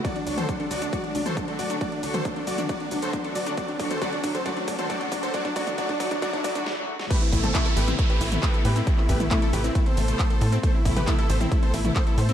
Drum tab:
CC |----------------|----------------|----------------|----------------|
RD |----------------|----------------|----------------|----------------|
HH |xxoxxxoxxxoxxxox|xxoxxxoxxxoxxxox|xxoxxxoxxxoxxxox|xxoxxxoxxxox----|
SH |x-xxx-xxx-xxx-xx|x-xxx-xxx-xxx-xx|x-xxx-xxx-xxx-xx|x-xxx-xxx-xx----|
CP |----------------|----------------|----------------|----------------|
SD |----------------|----------------|----------------|------------o--o|
T2 |---o-------o----|---o---o--------|---o-------o----|---o---o--------|
BD |o---o---o---o---|o---o---o---o---|o-o-o-o-o-o-o-o-|oooooooooooo----|

CC |x---------------|----------------|----------------|
RD |x-x-x-x-x-x-x-x-|x-x-x-x-x-x-x-x-|x-x-x-x-x-x-x-x-|
HH |x-oxxxoxxxoxxxox|x-oxxxoxxxoxxxox|x-oxxxoxxxoxxxox|
SH |x-xxx-xxx-xxx-xx|x-xxx-xxx-xxx-xx|x-xxx-xxx-xxx-xx|
CP |----x-------x---|-x--x-------x---|----x-------x---|
SD |----------------|----------------|----------------|
T2 |---o---o---o----|---o------------|---o---o---o----|
BD |o-o-o---o---o---|o-o-o---o---o---|o-o-o---o---o---|